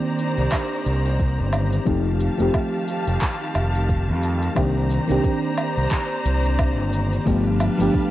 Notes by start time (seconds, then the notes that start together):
Already playing: D#3 A#3 C4 D4 G4 C5 D5 A#5
0.18 cabasa
0.38 C2, cabasa
0.52 kick, clap, cabasa, low woodblock
0.86 C2, cabasa
1.05 cabasa
1.20 kick, cabasa
1.39 G1
1.53 cabasa, low woodblock
1.73 cabasa
1.86 F1 D#3 F3 A3 C4 D#4 G4 F5 A5, kick, cabasa
2.21 cabasa
2.38 F1 F3 A3 C4 D#4 G4, cabasa
2.54 kick, cabasa, low woodblock
2.88 cabasa
3.07 F1, cabasa
3.21 kick, clap, cabasa
3.55 F1, cabasa, low woodblock
3.75 cabasa
3.89 kick, cabasa
4.09 F2
4.23 cabasa
4.42 cabasa
4.55 C2 D#3 A#3 C4 D4 G4 C5 D5 A#5, kick, cabasa, low woodblock
4.91 cabasa
5.07 C2 D#3 A#3 C4 D4, cabasa
5.12 G4
5.24 kick, cabasa
5.58 cabasa, low woodblock
5.77 C2, cabasa
5.92 kick, clap, cabasa
6.25 C2, cabasa
6.45 cabasa
6.59 kick, cabasa, low woodblock
6.78 G1
6.93 cabasa
7.12 cabasa
7.25 G1 F3 A3 B3 D4 G4 B4 F5 A5, kick, cabasa
7.60 cabasa, low woodblock
7.78 G1 F3 A3 B3 D4, cabasa
7.82 G4
7.94 kick, cabasa